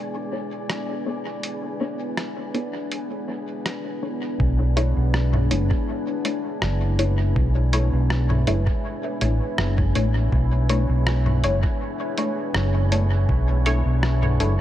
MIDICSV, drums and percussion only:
0, 0, Header, 1, 2, 480
1, 0, Start_track
1, 0, Tempo, 740741
1, 932, Time_signature, 4, 2, 24, 8
1, 9465, End_track
2, 0, Start_track
2, 0, Title_t, "Drums"
2, 451, Note_on_c, 9, 37, 71
2, 451, Note_on_c, 9, 42, 49
2, 515, Note_off_c, 9, 37, 0
2, 515, Note_off_c, 9, 42, 0
2, 929, Note_on_c, 9, 42, 46
2, 994, Note_off_c, 9, 42, 0
2, 1409, Note_on_c, 9, 37, 73
2, 1409, Note_on_c, 9, 42, 44
2, 1474, Note_off_c, 9, 37, 0
2, 1474, Note_off_c, 9, 42, 0
2, 1649, Note_on_c, 9, 42, 25
2, 1714, Note_off_c, 9, 42, 0
2, 1889, Note_on_c, 9, 42, 43
2, 1954, Note_off_c, 9, 42, 0
2, 2370, Note_on_c, 9, 37, 75
2, 2370, Note_on_c, 9, 42, 46
2, 2434, Note_off_c, 9, 37, 0
2, 2434, Note_off_c, 9, 42, 0
2, 2851, Note_on_c, 9, 36, 110
2, 2916, Note_off_c, 9, 36, 0
2, 3090, Note_on_c, 9, 42, 51
2, 3155, Note_off_c, 9, 42, 0
2, 3330, Note_on_c, 9, 37, 73
2, 3395, Note_off_c, 9, 37, 0
2, 3457, Note_on_c, 9, 64, 81
2, 3522, Note_off_c, 9, 64, 0
2, 3571, Note_on_c, 9, 42, 56
2, 3635, Note_off_c, 9, 42, 0
2, 3699, Note_on_c, 9, 36, 110
2, 3764, Note_off_c, 9, 36, 0
2, 4050, Note_on_c, 9, 42, 57
2, 4115, Note_off_c, 9, 42, 0
2, 4289, Note_on_c, 9, 37, 80
2, 4354, Note_off_c, 9, 37, 0
2, 4530, Note_on_c, 9, 42, 57
2, 4595, Note_off_c, 9, 42, 0
2, 4771, Note_on_c, 9, 36, 121
2, 4835, Note_off_c, 9, 36, 0
2, 5009, Note_on_c, 9, 42, 56
2, 5074, Note_off_c, 9, 42, 0
2, 5251, Note_on_c, 9, 37, 79
2, 5316, Note_off_c, 9, 37, 0
2, 5379, Note_on_c, 9, 64, 79
2, 5443, Note_off_c, 9, 64, 0
2, 5490, Note_on_c, 9, 42, 57
2, 5555, Note_off_c, 9, 42, 0
2, 5618, Note_on_c, 9, 36, 115
2, 5683, Note_off_c, 9, 36, 0
2, 5970, Note_on_c, 9, 42, 55
2, 6034, Note_off_c, 9, 42, 0
2, 6210, Note_on_c, 9, 37, 86
2, 6274, Note_off_c, 9, 37, 0
2, 6338, Note_on_c, 9, 36, 110
2, 6403, Note_off_c, 9, 36, 0
2, 6451, Note_on_c, 9, 42, 56
2, 6515, Note_off_c, 9, 42, 0
2, 6691, Note_on_c, 9, 36, 117
2, 6755, Note_off_c, 9, 36, 0
2, 6930, Note_on_c, 9, 42, 54
2, 6995, Note_off_c, 9, 42, 0
2, 7171, Note_on_c, 9, 37, 86
2, 7236, Note_off_c, 9, 37, 0
2, 7298, Note_on_c, 9, 64, 76
2, 7363, Note_off_c, 9, 64, 0
2, 7411, Note_on_c, 9, 42, 57
2, 7475, Note_off_c, 9, 42, 0
2, 7539, Note_on_c, 9, 36, 116
2, 7604, Note_off_c, 9, 36, 0
2, 7890, Note_on_c, 9, 42, 52
2, 7954, Note_off_c, 9, 42, 0
2, 8129, Note_on_c, 9, 37, 88
2, 8194, Note_off_c, 9, 37, 0
2, 8372, Note_on_c, 9, 42, 52
2, 8436, Note_off_c, 9, 42, 0
2, 8612, Note_on_c, 9, 36, 119
2, 8677, Note_off_c, 9, 36, 0
2, 8851, Note_on_c, 9, 42, 51
2, 8916, Note_off_c, 9, 42, 0
2, 9091, Note_on_c, 9, 37, 78
2, 9156, Note_off_c, 9, 37, 0
2, 9220, Note_on_c, 9, 64, 71
2, 9285, Note_off_c, 9, 64, 0
2, 9332, Note_on_c, 9, 42, 54
2, 9397, Note_off_c, 9, 42, 0
2, 9465, End_track
0, 0, End_of_file